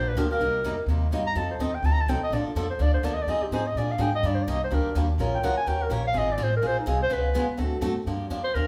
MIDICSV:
0, 0, Header, 1, 6, 480
1, 0, Start_track
1, 0, Key_signature, -3, "minor"
1, 0, Tempo, 239712
1, 797, Time_signature, 4, 2, 24, 8
1, 17367, End_track
2, 0, Start_track
2, 0, Title_t, "Clarinet"
2, 0, Program_c, 0, 71
2, 166, Note_on_c, 0, 71, 91
2, 366, Note_on_c, 0, 70, 82
2, 396, Note_off_c, 0, 71, 0
2, 614, Note_off_c, 0, 70, 0
2, 624, Note_on_c, 0, 70, 110
2, 1692, Note_off_c, 0, 70, 0
2, 2540, Note_on_c, 0, 82, 113
2, 2750, Note_on_c, 0, 81, 96
2, 2780, Note_off_c, 0, 82, 0
2, 3004, Note_off_c, 0, 81, 0
2, 3019, Note_on_c, 0, 72, 67
2, 3212, Note_on_c, 0, 75, 88
2, 3242, Note_off_c, 0, 72, 0
2, 3495, Note_on_c, 0, 79, 97
2, 3525, Note_off_c, 0, 75, 0
2, 3714, Note_on_c, 0, 81, 106
2, 3744, Note_off_c, 0, 79, 0
2, 3849, Note_on_c, 0, 82, 115
2, 3879, Note_off_c, 0, 81, 0
2, 4018, Note_on_c, 0, 81, 100
2, 4048, Note_off_c, 0, 82, 0
2, 4185, Note_on_c, 0, 79, 92
2, 4215, Note_off_c, 0, 81, 0
2, 4441, Note_off_c, 0, 79, 0
2, 4469, Note_on_c, 0, 75, 103
2, 4673, Note_on_c, 0, 74, 91
2, 4703, Note_off_c, 0, 75, 0
2, 4925, Note_off_c, 0, 74, 0
2, 4946, Note_on_c, 0, 65, 51
2, 5141, Note_on_c, 0, 69, 90
2, 5171, Note_off_c, 0, 65, 0
2, 5399, Note_off_c, 0, 69, 0
2, 5407, Note_on_c, 0, 72, 89
2, 5637, Note_on_c, 0, 74, 117
2, 5667, Note_off_c, 0, 72, 0
2, 5870, Note_off_c, 0, 74, 0
2, 5882, Note_on_c, 0, 72, 95
2, 6095, Note_on_c, 0, 74, 88
2, 6125, Note_off_c, 0, 72, 0
2, 6285, Note_on_c, 0, 75, 111
2, 6315, Note_off_c, 0, 74, 0
2, 6453, Note_on_c, 0, 74, 100
2, 6483, Note_off_c, 0, 75, 0
2, 6602, Note_on_c, 0, 75, 107
2, 6632, Note_off_c, 0, 74, 0
2, 6863, Note_on_c, 0, 67, 86
2, 6893, Note_off_c, 0, 75, 0
2, 7100, Note_on_c, 0, 72, 93
2, 7130, Note_off_c, 0, 67, 0
2, 7349, Note_on_c, 0, 75, 101
2, 7379, Note_off_c, 0, 72, 0
2, 7562, Note_on_c, 0, 74, 91
2, 7592, Note_off_c, 0, 75, 0
2, 7830, Note_on_c, 0, 77, 95
2, 7860, Note_off_c, 0, 74, 0
2, 8038, Note_on_c, 0, 79, 100
2, 8068, Note_off_c, 0, 77, 0
2, 8288, Note_off_c, 0, 79, 0
2, 8312, Note_on_c, 0, 75, 111
2, 8541, Note_on_c, 0, 74, 89
2, 8571, Note_off_c, 0, 75, 0
2, 8699, Note_on_c, 0, 72, 80
2, 8729, Note_off_c, 0, 74, 0
2, 8862, Note_on_c, 0, 74, 77
2, 8892, Note_off_c, 0, 72, 0
2, 9010, Note_on_c, 0, 75, 114
2, 9040, Note_off_c, 0, 74, 0
2, 9255, Note_off_c, 0, 75, 0
2, 9289, Note_on_c, 0, 72, 86
2, 9502, Note_on_c, 0, 70, 89
2, 9532, Note_off_c, 0, 72, 0
2, 9948, Note_off_c, 0, 70, 0
2, 10703, Note_on_c, 0, 79, 106
2, 10901, Note_on_c, 0, 78, 104
2, 10931, Note_off_c, 0, 79, 0
2, 11142, Note_off_c, 0, 78, 0
2, 11154, Note_on_c, 0, 80, 113
2, 11372, Note_on_c, 0, 79, 112
2, 11402, Note_off_c, 0, 80, 0
2, 11659, Note_on_c, 0, 70, 90
2, 11689, Note_off_c, 0, 79, 0
2, 11876, Note_on_c, 0, 73, 88
2, 11906, Note_off_c, 0, 70, 0
2, 12128, Note_off_c, 0, 73, 0
2, 12152, Note_on_c, 0, 77, 126
2, 12372, Note_on_c, 0, 75, 114
2, 12402, Note_off_c, 0, 77, 0
2, 12654, Note_on_c, 0, 74, 95
2, 12684, Note_off_c, 0, 75, 0
2, 12873, Note_on_c, 0, 72, 105
2, 12903, Note_off_c, 0, 74, 0
2, 13106, Note_off_c, 0, 72, 0
2, 13146, Note_on_c, 0, 70, 102
2, 13356, Note_on_c, 0, 72, 116
2, 13386, Note_off_c, 0, 70, 0
2, 13588, Note_off_c, 0, 72, 0
2, 13605, Note_on_c, 0, 63, 66
2, 13801, Note_on_c, 0, 68, 95
2, 13831, Note_off_c, 0, 63, 0
2, 14051, Note_off_c, 0, 68, 0
2, 14061, Note_on_c, 0, 72, 127
2, 14273, Note_on_c, 0, 71, 106
2, 14303, Note_off_c, 0, 72, 0
2, 15215, Note_off_c, 0, 71, 0
2, 17367, End_track
3, 0, Start_track
3, 0, Title_t, "Clarinet"
3, 0, Program_c, 1, 71
3, 16904, Note_on_c, 1, 72, 94
3, 17112, Note_on_c, 1, 70, 87
3, 17142, Note_off_c, 1, 72, 0
3, 17359, Note_off_c, 1, 70, 0
3, 17367, End_track
4, 0, Start_track
4, 0, Title_t, "Steel-string acoustic guitar"
4, 0, Program_c, 2, 25
4, 0, Note_on_c, 2, 53, 68
4, 0, Note_on_c, 2, 58, 70
4, 0, Note_on_c, 2, 62, 79
4, 0, Note_on_c, 2, 67, 80
4, 206, Note_off_c, 2, 62, 0
4, 208, Note_off_c, 2, 53, 0
4, 211, Note_off_c, 2, 58, 0
4, 215, Note_off_c, 2, 67, 0
4, 334, Note_on_c, 2, 50, 107
4, 350, Note_on_c, 2, 53, 110
4, 351, Note_on_c, 2, 58, 107
4, 355, Note_on_c, 2, 62, 104
4, 361, Note_on_c, 2, 67, 96
4, 528, Note_off_c, 2, 50, 0
4, 536, Note_off_c, 2, 53, 0
4, 537, Note_off_c, 2, 58, 0
4, 539, Note_off_c, 2, 62, 0
4, 542, Note_off_c, 2, 67, 0
4, 614, Note_on_c, 2, 67, 67
4, 627, Note_on_c, 2, 62, 52
4, 654, Note_on_c, 2, 58, 55
4, 799, Note_off_c, 2, 58, 0
4, 800, Note_off_c, 2, 67, 0
4, 807, Note_off_c, 2, 62, 0
4, 810, Note_on_c, 2, 48, 65
4, 816, Note_on_c, 2, 55, 64
4, 823, Note_on_c, 2, 58, 60
4, 824, Note_on_c, 2, 63, 75
4, 831, Note_on_c, 2, 67, 79
4, 1159, Note_off_c, 2, 48, 0
4, 1162, Note_off_c, 2, 55, 0
4, 1166, Note_off_c, 2, 58, 0
4, 1166, Note_off_c, 2, 63, 0
4, 1170, Note_off_c, 2, 67, 0
4, 1288, Note_on_c, 2, 55, 87
4, 1291, Note_on_c, 2, 48, 95
4, 1304, Note_on_c, 2, 67, 94
4, 1306, Note_on_c, 2, 63, 94
4, 1309, Note_on_c, 2, 58, 83
4, 1484, Note_off_c, 2, 55, 0
4, 1486, Note_off_c, 2, 48, 0
4, 1492, Note_off_c, 2, 67, 0
4, 1493, Note_off_c, 2, 63, 0
4, 1495, Note_off_c, 2, 58, 0
4, 1770, Note_on_c, 2, 48, 68
4, 1786, Note_on_c, 2, 58, 59
4, 1790, Note_on_c, 2, 55, 68
4, 1798, Note_on_c, 2, 67, 62
4, 1802, Note_on_c, 2, 63, 63
4, 2118, Note_off_c, 2, 48, 0
4, 2127, Note_off_c, 2, 58, 0
4, 2129, Note_off_c, 2, 55, 0
4, 2132, Note_off_c, 2, 67, 0
4, 2135, Note_off_c, 2, 63, 0
4, 2244, Note_on_c, 2, 48, 81
4, 2251, Note_on_c, 2, 55, 85
4, 2258, Note_on_c, 2, 58, 102
4, 2259, Note_on_c, 2, 63, 96
4, 2269, Note_on_c, 2, 67, 89
4, 2442, Note_off_c, 2, 48, 0
4, 2445, Note_off_c, 2, 55, 0
4, 2449, Note_off_c, 2, 58, 0
4, 2449, Note_off_c, 2, 63, 0
4, 2454, Note_off_c, 2, 67, 0
4, 2709, Note_on_c, 2, 53, 82
4, 2719, Note_on_c, 2, 60, 80
4, 2719, Note_on_c, 2, 63, 75
4, 2730, Note_on_c, 2, 69, 77
4, 3068, Note_off_c, 2, 53, 0
4, 3073, Note_off_c, 2, 60, 0
4, 3073, Note_off_c, 2, 63, 0
4, 3078, Note_off_c, 2, 69, 0
4, 3202, Note_on_c, 2, 53, 84
4, 3209, Note_on_c, 2, 63, 97
4, 3211, Note_on_c, 2, 60, 103
4, 3221, Note_on_c, 2, 69, 101
4, 3400, Note_off_c, 2, 53, 0
4, 3404, Note_off_c, 2, 63, 0
4, 3405, Note_off_c, 2, 60, 0
4, 3410, Note_off_c, 2, 69, 0
4, 3685, Note_on_c, 2, 53, 69
4, 3696, Note_on_c, 2, 63, 71
4, 3698, Note_on_c, 2, 60, 71
4, 3705, Note_on_c, 2, 69, 66
4, 4035, Note_off_c, 2, 53, 0
4, 4041, Note_off_c, 2, 63, 0
4, 4042, Note_off_c, 2, 60, 0
4, 4045, Note_off_c, 2, 69, 0
4, 4170, Note_on_c, 2, 53, 91
4, 4185, Note_on_c, 2, 60, 95
4, 4186, Note_on_c, 2, 63, 89
4, 4193, Note_on_c, 2, 69, 98
4, 4364, Note_off_c, 2, 53, 0
4, 4371, Note_off_c, 2, 60, 0
4, 4372, Note_off_c, 2, 63, 0
4, 4375, Note_off_c, 2, 69, 0
4, 4649, Note_on_c, 2, 50, 73
4, 4663, Note_on_c, 2, 58, 78
4, 4664, Note_on_c, 2, 62, 83
4, 4666, Note_on_c, 2, 53, 70
4, 4668, Note_on_c, 2, 69, 82
4, 4997, Note_off_c, 2, 50, 0
4, 5004, Note_off_c, 2, 58, 0
4, 5005, Note_off_c, 2, 62, 0
4, 5006, Note_off_c, 2, 53, 0
4, 5007, Note_off_c, 2, 69, 0
4, 5126, Note_on_c, 2, 50, 89
4, 5128, Note_on_c, 2, 58, 93
4, 5134, Note_on_c, 2, 53, 106
4, 5135, Note_on_c, 2, 62, 104
4, 5144, Note_on_c, 2, 69, 96
4, 5322, Note_off_c, 2, 50, 0
4, 5323, Note_off_c, 2, 58, 0
4, 5326, Note_off_c, 2, 53, 0
4, 5327, Note_off_c, 2, 62, 0
4, 5331, Note_off_c, 2, 69, 0
4, 5588, Note_on_c, 2, 50, 71
4, 5596, Note_on_c, 2, 53, 68
4, 5596, Note_on_c, 2, 58, 64
4, 5602, Note_on_c, 2, 69, 66
4, 5604, Note_on_c, 2, 62, 64
4, 5947, Note_off_c, 2, 50, 0
4, 5951, Note_off_c, 2, 53, 0
4, 5951, Note_off_c, 2, 58, 0
4, 5954, Note_off_c, 2, 69, 0
4, 5955, Note_off_c, 2, 62, 0
4, 6071, Note_on_c, 2, 50, 94
4, 6088, Note_on_c, 2, 58, 94
4, 6092, Note_on_c, 2, 53, 98
4, 6100, Note_on_c, 2, 69, 102
4, 6102, Note_on_c, 2, 62, 99
4, 6275, Note_off_c, 2, 50, 0
4, 6283, Note_off_c, 2, 58, 0
4, 6285, Note_off_c, 2, 53, 0
4, 6289, Note_off_c, 2, 69, 0
4, 6290, Note_off_c, 2, 62, 0
4, 6561, Note_on_c, 2, 53, 70
4, 6570, Note_on_c, 2, 60, 81
4, 6576, Note_on_c, 2, 63, 80
4, 6586, Note_on_c, 2, 68, 81
4, 6913, Note_off_c, 2, 53, 0
4, 6918, Note_off_c, 2, 60, 0
4, 6921, Note_off_c, 2, 63, 0
4, 6926, Note_off_c, 2, 68, 0
4, 7050, Note_on_c, 2, 53, 92
4, 7056, Note_on_c, 2, 60, 90
4, 7073, Note_on_c, 2, 68, 101
4, 7074, Note_on_c, 2, 63, 98
4, 7244, Note_off_c, 2, 53, 0
4, 7247, Note_off_c, 2, 60, 0
4, 7256, Note_off_c, 2, 63, 0
4, 7256, Note_off_c, 2, 68, 0
4, 7549, Note_on_c, 2, 53, 72
4, 7551, Note_on_c, 2, 50, 62
4, 7562, Note_on_c, 2, 58, 66
4, 7571, Note_on_c, 2, 68, 72
4, 7572, Note_on_c, 2, 62, 73
4, 7888, Note_off_c, 2, 53, 0
4, 7889, Note_off_c, 2, 50, 0
4, 7894, Note_off_c, 2, 58, 0
4, 7899, Note_off_c, 2, 62, 0
4, 7899, Note_off_c, 2, 68, 0
4, 7974, Note_on_c, 2, 50, 84
4, 7980, Note_on_c, 2, 53, 90
4, 7987, Note_on_c, 2, 58, 97
4, 7995, Note_on_c, 2, 62, 101
4, 8005, Note_on_c, 2, 68, 95
4, 8186, Note_off_c, 2, 50, 0
4, 8189, Note_off_c, 2, 53, 0
4, 8193, Note_off_c, 2, 58, 0
4, 8197, Note_off_c, 2, 62, 0
4, 8202, Note_off_c, 2, 68, 0
4, 8476, Note_on_c, 2, 51, 77
4, 8480, Note_on_c, 2, 55, 62
4, 8488, Note_on_c, 2, 58, 69
4, 8495, Note_on_c, 2, 62, 78
4, 8505, Note_on_c, 2, 67, 91
4, 8831, Note_off_c, 2, 51, 0
4, 8834, Note_off_c, 2, 55, 0
4, 8837, Note_off_c, 2, 58, 0
4, 8841, Note_off_c, 2, 62, 0
4, 8846, Note_off_c, 2, 67, 0
4, 8963, Note_on_c, 2, 51, 95
4, 8965, Note_on_c, 2, 55, 98
4, 8966, Note_on_c, 2, 62, 89
4, 8968, Note_on_c, 2, 58, 96
4, 8971, Note_on_c, 2, 67, 109
4, 9161, Note_off_c, 2, 51, 0
4, 9162, Note_off_c, 2, 55, 0
4, 9163, Note_off_c, 2, 62, 0
4, 9164, Note_off_c, 2, 58, 0
4, 9165, Note_off_c, 2, 67, 0
4, 9423, Note_on_c, 2, 51, 62
4, 9437, Note_on_c, 2, 58, 75
4, 9439, Note_on_c, 2, 55, 62
4, 9447, Note_on_c, 2, 62, 80
4, 9448, Note_on_c, 2, 67, 63
4, 9785, Note_off_c, 2, 51, 0
4, 9792, Note_off_c, 2, 58, 0
4, 9793, Note_off_c, 2, 55, 0
4, 9797, Note_off_c, 2, 62, 0
4, 9798, Note_off_c, 2, 67, 0
4, 9920, Note_on_c, 2, 51, 95
4, 9928, Note_on_c, 2, 55, 92
4, 9932, Note_on_c, 2, 58, 103
4, 9944, Note_on_c, 2, 67, 100
4, 9946, Note_on_c, 2, 62, 98
4, 10120, Note_off_c, 2, 51, 0
4, 10124, Note_off_c, 2, 55, 0
4, 10126, Note_off_c, 2, 58, 0
4, 10132, Note_off_c, 2, 67, 0
4, 10133, Note_off_c, 2, 62, 0
4, 10393, Note_on_c, 2, 53, 82
4, 10410, Note_on_c, 2, 56, 79
4, 10414, Note_on_c, 2, 61, 78
4, 10420, Note_on_c, 2, 70, 80
4, 10421, Note_on_c, 2, 65, 76
4, 10751, Note_off_c, 2, 53, 0
4, 10759, Note_off_c, 2, 56, 0
4, 10761, Note_off_c, 2, 61, 0
4, 10764, Note_off_c, 2, 65, 0
4, 10764, Note_off_c, 2, 70, 0
4, 10879, Note_on_c, 2, 53, 89
4, 10882, Note_on_c, 2, 61, 94
4, 10889, Note_on_c, 2, 56, 90
4, 10893, Note_on_c, 2, 65, 95
4, 10900, Note_on_c, 2, 70, 107
4, 11080, Note_off_c, 2, 53, 0
4, 11081, Note_off_c, 2, 61, 0
4, 11085, Note_off_c, 2, 56, 0
4, 11087, Note_off_c, 2, 65, 0
4, 11090, Note_off_c, 2, 70, 0
4, 11344, Note_on_c, 2, 51, 70
4, 11356, Note_on_c, 2, 58, 73
4, 11361, Note_on_c, 2, 61, 65
4, 11365, Note_on_c, 2, 67, 74
4, 11368, Note_on_c, 2, 70, 78
4, 11706, Note_off_c, 2, 51, 0
4, 11712, Note_off_c, 2, 58, 0
4, 11714, Note_off_c, 2, 61, 0
4, 11716, Note_off_c, 2, 67, 0
4, 11718, Note_off_c, 2, 70, 0
4, 11814, Note_on_c, 2, 51, 90
4, 11823, Note_on_c, 2, 58, 83
4, 11826, Note_on_c, 2, 61, 92
4, 11827, Note_on_c, 2, 67, 92
4, 11840, Note_on_c, 2, 70, 116
4, 12027, Note_off_c, 2, 51, 0
4, 12032, Note_off_c, 2, 58, 0
4, 12033, Note_off_c, 2, 61, 0
4, 12034, Note_off_c, 2, 67, 0
4, 12040, Note_off_c, 2, 70, 0
4, 12275, Note_on_c, 2, 56, 72
4, 12291, Note_on_c, 2, 60, 77
4, 12300, Note_on_c, 2, 68, 75
4, 12303, Note_on_c, 2, 65, 81
4, 12651, Note_off_c, 2, 56, 0
4, 12660, Note_off_c, 2, 60, 0
4, 12664, Note_off_c, 2, 68, 0
4, 12665, Note_off_c, 2, 65, 0
4, 12768, Note_on_c, 2, 56, 96
4, 12772, Note_on_c, 2, 60, 96
4, 12779, Note_on_c, 2, 65, 107
4, 12790, Note_on_c, 2, 68, 96
4, 12984, Note_off_c, 2, 56, 0
4, 12986, Note_off_c, 2, 60, 0
4, 12990, Note_off_c, 2, 65, 0
4, 12995, Note_off_c, 2, 68, 0
4, 13260, Note_on_c, 2, 56, 67
4, 13266, Note_on_c, 2, 60, 67
4, 13269, Note_on_c, 2, 65, 74
4, 13274, Note_on_c, 2, 68, 72
4, 13624, Note_off_c, 2, 56, 0
4, 13627, Note_off_c, 2, 60, 0
4, 13628, Note_off_c, 2, 65, 0
4, 13631, Note_off_c, 2, 68, 0
4, 13736, Note_on_c, 2, 56, 98
4, 13754, Note_on_c, 2, 60, 100
4, 13755, Note_on_c, 2, 65, 107
4, 13758, Note_on_c, 2, 68, 110
4, 13948, Note_off_c, 2, 56, 0
4, 13957, Note_off_c, 2, 60, 0
4, 13958, Note_off_c, 2, 65, 0
4, 13959, Note_off_c, 2, 68, 0
4, 14209, Note_on_c, 2, 49, 71
4, 14212, Note_on_c, 2, 56, 74
4, 14228, Note_on_c, 2, 65, 82
4, 14232, Note_on_c, 2, 59, 86
4, 14232, Note_on_c, 2, 68, 80
4, 14579, Note_off_c, 2, 49, 0
4, 14580, Note_off_c, 2, 56, 0
4, 14588, Note_off_c, 2, 65, 0
4, 14590, Note_off_c, 2, 59, 0
4, 14591, Note_off_c, 2, 68, 0
4, 14707, Note_on_c, 2, 49, 87
4, 14716, Note_on_c, 2, 59, 109
4, 14721, Note_on_c, 2, 56, 98
4, 14726, Note_on_c, 2, 68, 102
4, 14733, Note_on_c, 2, 65, 105
4, 14914, Note_off_c, 2, 49, 0
4, 14919, Note_off_c, 2, 59, 0
4, 14921, Note_off_c, 2, 56, 0
4, 14923, Note_off_c, 2, 68, 0
4, 14927, Note_off_c, 2, 65, 0
4, 15165, Note_on_c, 2, 57, 65
4, 15168, Note_on_c, 2, 50, 76
4, 15175, Note_on_c, 2, 60, 64
4, 15182, Note_on_c, 2, 66, 73
4, 15191, Note_on_c, 2, 69, 84
4, 15538, Note_off_c, 2, 57, 0
4, 15539, Note_off_c, 2, 50, 0
4, 15543, Note_off_c, 2, 60, 0
4, 15546, Note_off_c, 2, 66, 0
4, 15550, Note_off_c, 2, 69, 0
4, 15650, Note_on_c, 2, 50, 95
4, 15655, Note_on_c, 2, 57, 97
4, 15655, Note_on_c, 2, 60, 98
4, 15663, Note_on_c, 2, 69, 117
4, 15664, Note_on_c, 2, 66, 98
4, 15866, Note_off_c, 2, 50, 0
4, 15869, Note_off_c, 2, 57, 0
4, 15869, Note_off_c, 2, 60, 0
4, 15873, Note_off_c, 2, 66, 0
4, 15873, Note_off_c, 2, 69, 0
4, 16156, Note_on_c, 2, 53, 73
4, 16160, Note_on_c, 2, 50, 64
4, 16165, Note_on_c, 2, 67, 72
4, 16167, Note_on_c, 2, 58, 82
4, 16167, Note_on_c, 2, 62, 68
4, 16515, Note_off_c, 2, 53, 0
4, 16516, Note_off_c, 2, 50, 0
4, 16519, Note_off_c, 2, 67, 0
4, 16520, Note_off_c, 2, 58, 0
4, 16520, Note_off_c, 2, 62, 0
4, 16624, Note_on_c, 2, 50, 75
4, 16630, Note_on_c, 2, 53, 84
4, 16636, Note_on_c, 2, 58, 84
4, 16639, Note_on_c, 2, 62, 89
4, 16645, Note_on_c, 2, 67, 91
4, 16835, Note_off_c, 2, 50, 0
4, 16838, Note_off_c, 2, 53, 0
4, 16841, Note_off_c, 2, 58, 0
4, 16843, Note_off_c, 2, 62, 0
4, 16846, Note_off_c, 2, 67, 0
4, 17126, Note_on_c, 2, 50, 62
4, 17134, Note_on_c, 2, 53, 61
4, 17142, Note_on_c, 2, 62, 66
4, 17145, Note_on_c, 2, 58, 64
4, 17150, Note_on_c, 2, 67, 74
4, 17367, Note_off_c, 2, 50, 0
4, 17367, Note_off_c, 2, 53, 0
4, 17367, Note_off_c, 2, 58, 0
4, 17367, Note_off_c, 2, 62, 0
4, 17367, Note_off_c, 2, 67, 0
4, 17367, End_track
5, 0, Start_track
5, 0, Title_t, "Upright bass"
5, 0, Program_c, 3, 32
5, 0, Note_on_c, 3, 34, 97
5, 292, Note_off_c, 3, 34, 0
5, 304, Note_on_c, 3, 38, 96
5, 775, Note_off_c, 3, 38, 0
5, 792, Note_on_c, 3, 36, 101
5, 1259, Note_off_c, 3, 36, 0
5, 1272, Note_on_c, 3, 41, 83
5, 1718, Note_off_c, 3, 41, 0
5, 1730, Note_on_c, 3, 39, 94
5, 2207, Note_off_c, 3, 39, 0
5, 2224, Note_on_c, 3, 43, 94
5, 2694, Note_off_c, 3, 43, 0
5, 2710, Note_on_c, 3, 41, 98
5, 3177, Note_off_c, 3, 41, 0
5, 3188, Note_on_c, 3, 39, 97
5, 3641, Note_off_c, 3, 39, 0
5, 3653, Note_on_c, 3, 38, 100
5, 4121, Note_off_c, 3, 38, 0
5, 4133, Note_on_c, 3, 36, 97
5, 4396, Note_off_c, 3, 36, 0
5, 4614, Note_on_c, 3, 34, 100
5, 4876, Note_off_c, 3, 34, 0
5, 5110, Note_on_c, 3, 41, 97
5, 5577, Note_off_c, 3, 41, 0
5, 5598, Note_on_c, 3, 38, 99
5, 6056, Note_off_c, 3, 38, 0
5, 6068, Note_on_c, 3, 39, 107
5, 6530, Note_off_c, 3, 39, 0
5, 6542, Note_on_c, 3, 41, 92
5, 6801, Note_off_c, 3, 41, 0
5, 7031, Note_on_c, 3, 44, 91
5, 7498, Note_off_c, 3, 44, 0
5, 7513, Note_on_c, 3, 46, 90
5, 7968, Note_off_c, 3, 46, 0
5, 7980, Note_on_c, 3, 44, 106
5, 8452, Note_off_c, 3, 44, 0
5, 8472, Note_on_c, 3, 43, 94
5, 8932, Note_off_c, 3, 43, 0
5, 8944, Note_on_c, 3, 36, 86
5, 9414, Note_off_c, 3, 36, 0
5, 9440, Note_on_c, 3, 38, 99
5, 9690, Note_off_c, 3, 38, 0
5, 9910, Note_on_c, 3, 39, 106
5, 10363, Note_off_c, 3, 39, 0
5, 10375, Note_on_c, 3, 34, 100
5, 10840, Note_off_c, 3, 34, 0
5, 10852, Note_on_c, 3, 37, 90
5, 11107, Note_off_c, 3, 37, 0
5, 11346, Note_on_c, 3, 39, 91
5, 11793, Note_off_c, 3, 39, 0
5, 11805, Note_on_c, 3, 34, 99
5, 12285, Note_off_c, 3, 34, 0
5, 12296, Note_on_c, 3, 32, 104
5, 12771, Note_off_c, 3, 32, 0
5, 12780, Note_on_c, 3, 33, 101
5, 13236, Note_off_c, 3, 33, 0
5, 13248, Note_on_c, 3, 34, 95
5, 13727, Note_off_c, 3, 34, 0
5, 13749, Note_on_c, 3, 36, 104
5, 14208, Note_off_c, 3, 36, 0
5, 14220, Note_on_c, 3, 37, 109
5, 14678, Note_off_c, 3, 37, 0
5, 14690, Note_on_c, 3, 41, 103
5, 14955, Note_off_c, 3, 41, 0
5, 15184, Note_on_c, 3, 38, 99
5, 15630, Note_off_c, 3, 38, 0
5, 15642, Note_on_c, 3, 42, 112
5, 15912, Note_off_c, 3, 42, 0
5, 16144, Note_on_c, 3, 43, 87
5, 16604, Note_off_c, 3, 43, 0
5, 16616, Note_on_c, 3, 41, 85
5, 17094, Note_off_c, 3, 41, 0
5, 17119, Note_on_c, 3, 39, 95
5, 17367, Note_off_c, 3, 39, 0
5, 17367, End_track
6, 0, Start_track
6, 0, Title_t, "Muted upright bass strokes"
6, 4902, Note_on_c, 9, 29, 45
6, 5103, Note_off_c, 9, 29, 0
6, 6822, Note_on_c, 9, 29, 43
6, 7022, Note_off_c, 9, 29, 0
6, 11119, Note_on_c, 9, 29, 43
6, 11319, Note_off_c, 9, 29, 0
6, 14980, Note_on_c, 9, 29, 41
6, 15181, Note_off_c, 9, 29, 0
6, 15925, Note_on_c, 9, 29, 35
6, 16125, Note_off_c, 9, 29, 0
6, 17367, End_track
0, 0, End_of_file